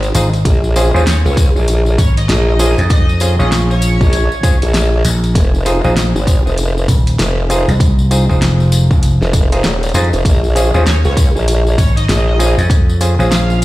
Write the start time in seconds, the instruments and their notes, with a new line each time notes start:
Already playing: wobble bass G#1
0.03 closed hi-hat, tambourine
0.15 slap bass G#1, clav D#4 F4 G#4 C5, cross-stick, closed hi-hat, tambourine
0.33 closed hi-hat, tambourine
0.45 wobble bass A#1, kick, closed hi-hat, tambourine
0.64 tambourine
0.76 clav C#4 F4 G#4 C5, closed hi-hat, tambourine
0.94 slap bass D#2, clav C#4 F4 G#4 C5, tambourine
1.06 analog synth lead C#5, snare, closed hi-hat, tambourine
1.25 wobble bass C#2, analog synth lead C#5, tambourine
1.37 kick, closed hi-hat, tambourine
1.56 wobble bass A#1, tambourine
1.68 closed hi-hat, tambourine
1.86 tambourine
1.98 slap bass G#1, analog synth lead C#5, kick, closed hi-hat, tambourine
2.17 analog synth lead D#5, closed hi-hat, tambourine
2.29 wobble bass A#1, analog synth lead D#5, snare, closed hi-hat, tambourine
2.48 analog synth lead D#5
2.59 clav C#4 F4 G#4 C5, cross-stick, closed hi-hat, tambourine
2.78 slap bass F2, closed hi-hat, tambourine
2.90 analog synth lead D#5, kick, closed hi-hat, tambourine
3.09 tambourine
3.20 clav C#4 F4 G#4 C5, analog synth lead D#5, cross-stick, closed hi-hat, tambourine
3.39 slap bass A#1, clav C#4 F4 G#4 C#5, analog synth lead D#5, tambourine
3.52 snare, closed hi-hat, tambourine
3.70 analog synth lead C#5, tambourine
3.82 closed hi-hat, tambourine
4.01 wobble bass A#1, kick, tambourine
4.13 closed hi-hat, tambourine
4.32 tambourine
4.43 clav C#4 F4 G#4 C5, kick, closed hi-hat, tambourine
4.62 wobble bass A#1, closed hi-hat, tambourine
4.74 snare, closed hi-hat, tambourine
5.05 slap bass A#1, cross-stick, closed hi-hat, tambourine
5.09 cross-stick
5.14 cross-stick
5.19 cross-stick
5.24 cross-stick, closed hi-hat, tambourine
5.27 cross-stick
5.30 cross-stick
5.32 wobble bass F1, kick, cross-stick, closed hi-hat, tambourine
5.55 tambourine
5.66 clav D#4 F4 G#4 C5, closed hi-hat, tambourine
5.84 slap bass A#1, clav D#4 F4 G#4 C5, tambourine
5.97 snare, closed hi-hat, tambourine
6.15 wobble bass G#1, tambourine
6.27 kick, closed hi-hat, tambourine
6.46 wobble bass F1, tambourine
6.58 closed hi-hat, tambourine
6.78 tambourine
6.88 slap bass D#1, kick, closed hi-hat, tambourine
7.07 closed hi-hat, tambourine
7.19 wobble bass F1, snare, closed hi-hat, tambourine
7.50 clav D#4 F4 G#4 C5, cross-stick, closed hi-hat, tambourine
7.68 slap bass C2, closed hi-hat, tambourine
7.80 kick, closed hi-hat, tambourine
7.99 tambourine
8.11 clav D#4 F4 G#4 C5, cross-stick, closed hi-hat, tambourine
8.29 slap bass F1, clav D#4 F4 G#4 C5, kick, tambourine
8.42 snare, closed hi-hat, tambourine
8.60 tambourine
8.72 closed hi-hat, tambourine
8.91 slap bass F1, kick, tambourine
9.03 closed hi-hat, tambourine
9.22 wobble bass F1, snare, tambourine
9.33 kick, closed hi-hat, tambourine
9.52 clav D#4 F4 G#4 C5, closed hi-hat, tambourine
9.64 wobble bass D#1, snare, closed hi-hat, tambourine
9.83 closed hi-hat, tambourine
9.89 closed hi-hat
9.94 slap bass F2, clav D#4 F4 G#4 C5, cross-stick, closed hi-hat, tambourine
10.04 closed hi-hat
10.13 wobble bass F1, closed hi-hat, tambourine
10.25 wobble bass A#1, kick, closed hi-hat, tambourine
10.44 tambourine
10.55 clav C#4 F4 G#4 C5, closed hi-hat, tambourine
10.74 slap bass D#2, clav C#4 F4 G#4 C5, tambourine
10.86 analog synth lead C#5, snare, closed hi-hat, tambourine
11.05 wobble bass C#2, analog synth lead C#5, tambourine
11.17 kick, closed hi-hat, tambourine
11.35 wobble bass A#1, tambourine
11.48 closed hi-hat, tambourine
11.67 tambourine
11.78 slap bass G#1, analog synth lead C#5, kick, closed hi-hat, tambourine
11.96 analog synth lead D#5, closed hi-hat, tambourine
12.08 wobble bass A#1, analog synth lead D#5, snare, closed hi-hat, tambourine
12.27 analog synth lead D#5
12.39 clav C#4 F4 G#4 C5, cross-stick, closed hi-hat, tambourine
12.58 slap bass F2, closed hi-hat, tambourine
12.70 kick, closed hi-hat, tambourine
12.89 tambourine
13.01 clav C#4 F4 G#4 C5, cross-stick, closed hi-hat, tambourine
13.19 slap bass A#1, clav C#4 F4 G#4 C5, tambourine
13.31 analog synth lead F5, snare, closed hi-hat, tambourine
13.50 tambourine